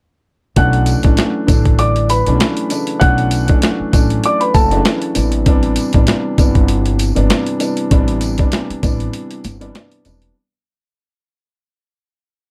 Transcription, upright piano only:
0, 0, Header, 1, 2, 480
1, 0, Start_track
1, 0, Tempo, 612245
1, 445, Time_signature, 4, 2, 24, 8
1, 9800, End_track
2, 0, Start_track
2, 0, Title_t, "Upright piano"
2, 0, Program_c, 0, 0
2, 446, Note_on_c, 0, 90, 97
2, 452, Note_on_c, 0, 78, 77
2, 1029, Note_off_c, 0, 90, 0
2, 1032, Note_off_c, 0, 78, 0
2, 1403, Note_on_c, 0, 86, 88
2, 1409, Note_on_c, 0, 74, 67
2, 1620, Note_off_c, 0, 86, 0
2, 1623, Note_off_c, 0, 74, 0
2, 1643, Note_on_c, 0, 83, 73
2, 1650, Note_on_c, 0, 71, 60
2, 2332, Note_off_c, 0, 83, 0
2, 2336, Note_off_c, 0, 71, 0
2, 2349, Note_on_c, 0, 90, 97
2, 2355, Note_on_c, 0, 78, 85
2, 2940, Note_off_c, 0, 90, 0
2, 2943, Note_off_c, 0, 78, 0
2, 3336, Note_on_c, 0, 86, 87
2, 3342, Note_on_c, 0, 74, 73
2, 3452, Note_off_c, 0, 86, 0
2, 3452, Note_on_c, 0, 83, 72
2, 3455, Note_off_c, 0, 74, 0
2, 3459, Note_on_c, 0, 71, 60
2, 3550, Note_off_c, 0, 83, 0
2, 3554, Note_off_c, 0, 71, 0
2, 3561, Note_on_c, 0, 81, 80
2, 3568, Note_on_c, 0, 69, 62
2, 3779, Note_off_c, 0, 81, 0
2, 3782, Note_off_c, 0, 69, 0
2, 9800, End_track
0, 0, End_of_file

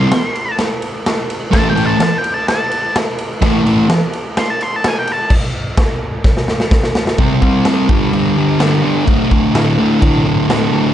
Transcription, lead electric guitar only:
0, 0, Header, 1, 2, 480
1, 0, Start_track
1, 0, Tempo, 471328
1, 1557, Time_signature, 4, 2, 24, 8
1, 11139, End_track
2, 0, Start_track
2, 0, Title_t, "Lead electric guitar"
2, 0, Program_c, 0, 29
2, 0, Note_on_c, 0, 84, 99
2, 577, Note_off_c, 0, 84, 0
2, 1566, Note_on_c, 0, 81, 111
2, 1718, Note_off_c, 0, 81, 0
2, 1726, Note_on_c, 0, 79, 97
2, 1878, Note_off_c, 0, 79, 0
2, 1897, Note_on_c, 0, 81, 109
2, 2044, Note_off_c, 0, 81, 0
2, 2065, Note_on_c, 0, 81, 111
2, 2220, Note_off_c, 0, 81, 0
2, 2220, Note_on_c, 0, 79, 86
2, 2383, Note_off_c, 0, 79, 0
2, 2383, Note_on_c, 0, 81, 94
2, 2520, Note_off_c, 0, 81, 0
2, 2532, Note_on_c, 0, 81, 107
2, 2992, Note_off_c, 0, 81, 0
2, 4465, Note_on_c, 0, 84, 115
2, 4585, Note_off_c, 0, 84, 0
2, 4585, Note_on_c, 0, 81, 87
2, 4710, Note_off_c, 0, 81, 0
2, 4710, Note_on_c, 0, 84, 99
2, 4847, Note_off_c, 0, 84, 0
2, 4847, Note_on_c, 0, 81, 94
2, 4968, Note_off_c, 0, 81, 0
2, 4968, Note_on_c, 0, 80, 97
2, 5062, Note_off_c, 0, 80, 0
2, 5081, Note_on_c, 0, 79, 99
2, 5211, Note_off_c, 0, 79, 0
2, 5211, Note_on_c, 0, 81, 100
2, 5420, Note_off_c, 0, 81, 0
2, 11139, End_track
0, 0, End_of_file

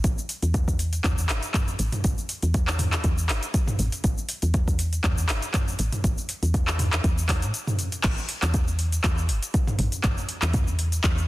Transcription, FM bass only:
0, 0, Header, 1, 2, 480
1, 0, Start_track
1, 0, Tempo, 500000
1, 39, Time_signature, 4, 2, 24, 8
1, 10826, End_track
2, 0, Start_track
2, 0, Title_t, "FM bass"
2, 0, Program_c, 0, 39
2, 41, Note_on_c, 0, 33, 96
2, 141, Note_off_c, 0, 33, 0
2, 409, Note_on_c, 0, 40, 88
2, 960, Note_off_c, 0, 40, 0
2, 1002, Note_on_c, 0, 40, 94
2, 1241, Note_on_c, 0, 31, 87
2, 1255, Note_off_c, 0, 40, 0
2, 1341, Note_off_c, 0, 31, 0
2, 1721, Note_on_c, 0, 33, 100
2, 1821, Note_off_c, 0, 33, 0
2, 1962, Note_on_c, 0, 33, 97
2, 2062, Note_off_c, 0, 33, 0
2, 2331, Note_on_c, 0, 40, 88
2, 2881, Note_off_c, 0, 40, 0
2, 2921, Note_on_c, 0, 40, 92
2, 3160, Note_on_c, 0, 31, 87
2, 3174, Note_off_c, 0, 40, 0
2, 3260, Note_off_c, 0, 31, 0
2, 3640, Note_on_c, 0, 33, 101
2, 3740, Note_off_c, 0, 33, 0
2, 3880, Note_on_c, 0, 33, 96
2, 3980, Note_off_c, 0, 33, 0
2, 4250, Note_on_c, 0, 40, 88
2, 4800, Note_off_c, 0, 40, 0
2, 4839, Note_on_c, 0, 40, 96
2, 5080, Note_on_c, 0, 31, 84
2, 5095, Note_off_c, 0, 40, 0
2, 5181, Note_off_c, 0, 31, 0
2, 5561, Note_on_c, 0, 33, 101
2, 5661, Note_off_c, 0, 33, 0
2, 5800, Note_on_c, 0, 33, 91
2, 5901, Note_off_c, 0, 33, 0
2, 6169, Note_on_c, 0, 40, 89
2, 6720, Note_off_c, 0, 40, 0
2, 6761, Note_on_c, 0, 40, 91
2, 7129, Note_on_c, 0, 45, 88
2, 7144, Note_off_c, 0, 40, 0
2, 7215, Note_off_c, 0, 45, 0
2, 7721, Note_on_c, 0, 33, 95
2, 7821, Note_off_c, 0, 33, 0
2, 8090, Note_on_c, 0, 40, 92
2, 8640, Note_off_c, 0, 40, 0
2, 8679, Note_on_c, 0, 40, 92
2, 8919, Note_on_c, 0, 31, 90
2, 8933, Note_off_c, 0, 40, 0
2, 9020, Note_off_c, 0, 31, 0
2, 9399, Note_on_c, 0, 33, 100
2, 9500, Note_off_c, 0, 33, 0
2, 9639, Note_on_c, 0, 33, 97
2, 9740, Note_off_c, 0, 33, 0
2, 10007, Note_on_c, 0, 40, 95
2, 10559, Note_off_c, 0, 40, 0
2, 10599, Note_on_c, 0, 40, 95
2, 10826, Note_off_c, 0, 40, 0
2, 10826, End_track
0, 0, End_of_file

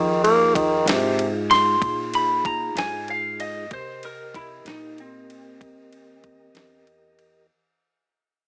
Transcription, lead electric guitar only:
0, 0, Header, 1, 2, 480
1, 0, Start_track
1, 0, Tempo, 632244
1, 2816, Time_signature, 12, 3, 24, 8
1, 6435, End_track
2, 0, Start_track
2, 0, Title_t, "Lead electric guitar"
2, 0, Program_c, 0, 29
2, 1144, Note_on_c, 0, 84, 97
2, 1606, Note_off_c, 0, 84, 0
2, 1633, Note_on_c, 0, 83, 78
2, 1858, Note_off_c, 0, 83, 0
2, 1869, Note_on_c, 0, 82, 80
2, 2095, Note_off_c, 0, 82, 0
2, 2113, Note_on_c, 0, 80, 93
2, 2337, Note_off_c, 0, 80, 0
2, 2357, Note_on_c, 0, 77, 86
2, 2579, Note_off_c, 0, 77, 0
2, 2583, Note_on_c, 0, 75, 87
2, 2812, Note_off_c, 0, 75, 0
2, 2835, Note_on_c, 0, 72, 81
2, 3059, Note_off_c, 0, 72, 0
2, 3078, Note_on_c, 0, 70, 81
2, 3300, Note_off_c, 0, 70, 0
2, 3309, Note_on_c, 0, 64, 82
2, 3535, Note_off_c, 0, 64, 0
2, 3552, Note_on_c, 0, 63, 85
2, 3777, Note_off_c, 0, 63, 0
2, 3798, Note_on_c, 0, 60, 89
2, 5197, Note_off_c, 0, 60, 0
2, 6435, End_track
0, 0, End_of_file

